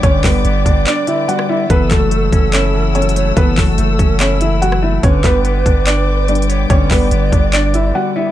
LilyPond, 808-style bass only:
\new Staff \with { instrumentName = "808-style bass" } { \clef bass \time 4/4 \key g \lydian \tempo 4 = 144 g,,8 g,,8 g,,8 g,,8 r2 | fis,,8 fis,,4 fis,,2~ fis,,8 | fis,,8 fis,,8 fis,,8 fis,,2~ fis,,8 | g,,8 g,,4 g,,2~ g,,8 |
g,,8 g,,8 g,,8 g,,4. r4 | }